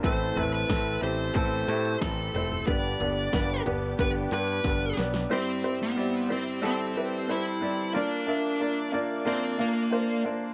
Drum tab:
HH |x-x-x-x-x-xxx-x-|x-x-xxx-x-xxx-x-|----------------|----------------|
SD |----o-------o---|----o-------o-oo|----------------|----------------|
FT |--o-----------oo|--o---o---------|----------------|----------------|
BD |o---o---o---o---|o---o---o---o---|----------------|----------------|